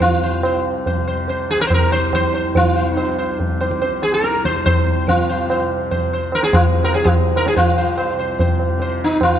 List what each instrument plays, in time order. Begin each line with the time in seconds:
Already playing: tanpura C2 F2 C3
0.00 sitar F4, tabla tin, tabla ge
0.23 sitar C5
0.39 tanpura C3
0.43 sitar C5, tabla na
0.86 sitar C5, tabla tin, tabla ge
0.97 tanpura C3
1.07 sitar C5
1.28 sitar C5, tabla tin
1.51 sitar G#4
1.55 tanpura C2
1.61 sitar A#4
1.67 sitar C5, tabla na, tabla ge
1.74 sitar A#4
1.92 sitar C5, tabla te
2.13 tanpura F2, sitar C5, tabla na, tabla ge
2.34 sitar C5, tabla te
2.55 sitar F4, tabla tin, tabla ge
2.73 tanpura C3, sitar C5
2.96 sitar D#4 C5, tabla na
3.18 sitar C5, tabla na
3.30 tanpura C3
3.40 tabla tin, tabla ge
3.60 sitar C5, tabla na
3.71 tabla ke
3.82 sitar C5, tabla tin
3.88 tanpura C2
4.02 sitar G#4, tabla na
4.14 sitar A#4
4.24 tabla te
4.35 tabla te
4.45 tanpura F2, sitar C5, tabla ke
4.56 tabla te
4.66 sitar C5, tabla na, tabla ge
4.87 tabla ge
5.03 tanpura C3
5.08 sitar F4, tabla tin, tabla ge
5.29 sitar C5
5.50 sitar C5, tabla na
5.60 tanpura C3
5.91 sitar C5, tabla tin, tabla ge
6.13 tanpura C2, sitar C5
6.32 sitar A#4, tabla na
6.43 sitar G#4, tabla te
6.53 sitar F4, tabla na, tabla ge
6.73 tanpura F2
6.84 sitar A#4, tabla na
6.94 sitar G#4, tabla te
7.04 sitar F4, tabla na, tabla ge
7.30 tanpura C3
7.36 sitar A#4, tabla na
7.46 sitar G#4, tabla te
7.56 tanpura F2, sitar F4 C5, tabla tin, tabla ge
7.78 sitar C5
7.97 sitar C5, tabla na
8.12 tanpura C3
8.19 sitar C5
8.39 sitar C5, tabla tin, tabla ge
8.59 tabla na
8.68 tanpura C3
8.80 sitar C5, tabla tin
9.04 sitar D#4
9.21 sitar F4, tabla na, tabla ge
9.27 tanpura C2